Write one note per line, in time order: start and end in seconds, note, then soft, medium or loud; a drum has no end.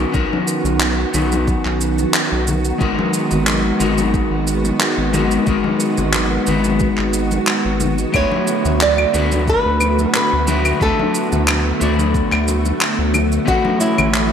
0.00 8.10 D#3 medium
0.00 0.10 B3 medium
0.00 13.43 B3 medium
0.00 0.10 C#4 medium
0.00 0.10 D#4 medium
0.00 0.11 F#4 medium
0.00 13.43 F#4 medium
0.00 0.11 A#4 medium
0.12 0.25 B1 loud
0.12 1.09 B3 medium
0.12 1.10 C#4 medium
0.12 1.10 D#4 medium
0.12 1.10 F#4 medium
0.12 1.11 A#4 medium
0.12 kick loud
0.12 shaker soft
0.33 high conga medium
0.48 shaker medium
0.64 1.05 B1 medium
0.64 low conga medium
0.64 shaker soft
0.80 clap medium
0.80 high conga medium
0.80 shaker soft
1.13 1.56 B1 medium
1.13 2.76 B3 medium
1.13 2.77 C#4 medium
1.13 2.77 D#4 medium
1.13 2.78 F#4 medium
1.13 2.78 B4 medium
1.13 low conga medium
1.13 shaker medium
1.32 high conga medium
1.32 shaker soft
1.47 kick loud
1.47 shaker soft
1.65 2.06 B1 medium
1.65 clap soft
1.81 shaker medium
1.98 high conga medium
1.98 shaker soft
2.14 clap loud
2.14 shaker soft
2.32 2.73 B1 medium
2.47 high conga medium
2.47 low conga medium
2.47 shaker medium
2.65 shaker soft
2.78 2.92 G#1 medium
2.78 3.76 G#3 medium
2.78 8.10 G#3 medium
2.78 3.76 B3 medium
2.78 3.77 D#4 medium
2.78 3.77 F#4 medium
2.78 3.77 A#4 loud
2.78 kick loud
2.78 shaker soft
2.99 high conga loud
3.13 shaker medium
3.31 3.72 G#1 medium
3.31 low conga medium
3.31 shaker soft
3.47 clap medium
3.47 high conga medium
3.47 shaker soft
3.78 4.22 G#1 medium
3.78 5.09 G#3 medium
3.78 5.10 B3 medium
3.78 5.10 D#4 medium
3.78 5.10 F#4 medium
3.78 5.11 A#4 medium
3.78 low conga medium
3.78 shaker medium
3.98 high conga medium
3.98 shaker soft
4.14 kick loud
4.14 shaker soft
4.31 4.72 G#1 medium
4.47 shaker medium
4.64 high conga medium
4.64 shaker soft
4.80 clap medium
4.80 shaker soft
4.98 5.39 G#1 medium
5.12 5.43 G#3 medium
5.12 5.43 B3 medium
5.12 5.43 D#4 medium
5.12 5.44 F#4 medium
5.12 5.44 A#4 medium
5.12 high conga medium
5.12 low conga medium
5.12 shaker medium
5.31 shaker soft
5.45 5.58 G#1 loud
5.45 6.43 G#3 medium
5.45 6.43 B3 medium
5.45 6.43 D#4 medium
5.45 6.44 F#4 medium
5.45 6.44 A#4 medium
5.45 kick loud
5.45 shaker soft
5.64 high conga medium
5.80 shaker medium
5.97 6.39 G#1 medium
5.97 low conga medium
5.97 shaker soft
6.13 clap medium
6.13 high conga medium
6.13 shaker soft
6.45 6.89 G#1 loud
6.45 8.09 G#3 medium
6.45 8.10 B3 medium
6.45 8.10 D#4 medium
6.45 8.11 F#4 medium
6.45 8.11 B4 medium
6.45 low conga medium
6.45 shaker medium
6.64 high conga medium
6.64 shaker soft
6.79 kick loud
6.79 shaker soft
6.97 7.39 G#1 medium
6.97 clap soft
7.13 shaker medium
7.31 high conga medium
7.31 shaker soft
7.47 clap medium
7.47 shaker soft
7.65 8.06 G#1 medium
7.80 high conga medium
7.80 low conga medium
7.80 shaker medium
7.98 shaker soft
8.12 8.25 D2 medium
8.12 13.43 D3 medium
8.12 9.10 A3 medium
8.12 14.32 A3 medium
8.12 9.10 D4 medium
8.12 9.10 E4 medium
8.12 9.11 F#4 medium
8.12 9.11 B4 loud
8.12 8.78 C#5 medium
8.12 kick loud
8.12 claves medium
8.12 shaker soft
8.32 high conga medium
8.47 shaker medium
8.65 9.06 D2 medium
8.65 low conga medium
8.65 shaker soft
8.80 9.49 D5 loud
8.80 clap medium
8.80 high conga medium
8.80 shaker soft
8.98 muted conga soft
8.98 claves medium
9.13 9.56 D2 medium
9.13 10.43 A3 medium
9.13 10.43 D4 medium
9.13 10.44 E4 medium
9.13 10.44 F#4 medium
9.13 10.45 B4 loud
9.13 low conga medium
9.13 shaker medium
9.32 high conga medium
9.32 shaker soft
9.48 10.15 B4 loud
9.48 kick loud
9.48 shaker soft
9.66 10.06 D2 medium
9.80 muted conga soft
9.80 claves medium
9.80 shaker medium
9.98 high conga medium
9.98 shaker soft
10.14 10.78 B4 medium
10.14 clap medium
10.14 shaker soft
10.33 10.73 D2 medium
10.47 10.77 A3 medium
10.47 10.77 D4 medium
10.47 10.77 E4 medium
10.47 10.78 F#4 medium
10.47 10.77 B4 medium
10.47 high conga medium
10.47 low conga medium
10.47 shaker medium
10.65 claves medium
10.65 shaker soft
10.80 10.92 D2 loud
10.80 11.76 A3 medium
10.80 11.77 D4 medium
10.80 11.77 E4 medium
10.80 11.78 F#4 medium
10.80 12.78 A4 medium
10.80 11.78 B4 medium
10.80 kick loud
10.80 shaker soft
10.99 high conga medium
11.15 shaker medium
11.32 11.73 D2 medium
11.32 low conga medium
11.32 shaker soft
11.47 clap medium
11.47 high conga medium
11.47 claves medium
11.47 shaker soft
11.80 12.23 D2 loud
11.80 13.43 A3 medium
11.80 13.43 D4 medium
11.80 13.44 E4 medium
11.80 13.44 F#4 medium
11.80 13.45 D5 medium
11.80 low conga medium
11.80 shaker medium
11.99 high conga medium
11.99 shaker soft
12.14 kick loud
12.14 shaker soft
12.32 12.72 D2 medium
12.32 clap soft
12.32 claves medium
12.48 muted conga medium
12.48 shaker medium
12.65 high conga medium
12.65 shaker soft
12.81 clap medium
12.81 shaker soft
12.99 13.39 D2 medium
13.14 muted conga soft
13.14 high conga medium
13.14 low conga medium
13.14 claves medium
13.14 shaker medium
13.32 shaker soft
13.46 13.59 A1 loud
13.46 14.32 E3 medium
13.46 14.32 A3 medium
13.46 14.32 C#4 medium
13.46 14.32 E4 medium
13.46 14.32 F#4 medium
13.46 13.79 F#4 medium
13.46 14.32 B4 loud
13.46 kick loud
13.46 shaker soft
13.65 high conga medium
13.80 14.32 E4 medium
13.80 shaker medium
13.98 14.32 A1 medium
13.98 low conga medium
13.98 claves medium
13.98 shaker soft
14.14 clap medium
14.14 high conga medium
14.14 shaker soft